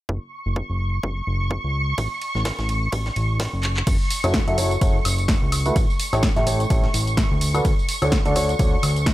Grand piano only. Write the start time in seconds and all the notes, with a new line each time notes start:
4.24 F#3 E4 F#4 A4 C#5
4.48 F#3 E4 F#4 A4 E5
4.58 F#3 E4 F#4 A4 C#5
4.81 F#3 E4 F#4 A4 C#5
5.66 A3 E4 F#4 A4 B4
6.13 A3 E4 G4 A4 C#5
6.36 A3 E4 G4 A4 E5
6.47 A3 E4 G4 A4 C#5
6.70 A3 E4 G4 A4 C#5
7.54 D3 D4 F#4 A4 B4
8.02 D3 D4 F#4 A4 C#5
8.25 D3 D4 F#4 A4 D5
8.36 D3 D4 F#4 A4 C#5
8.59 D3 D4 F#4 A4 C#5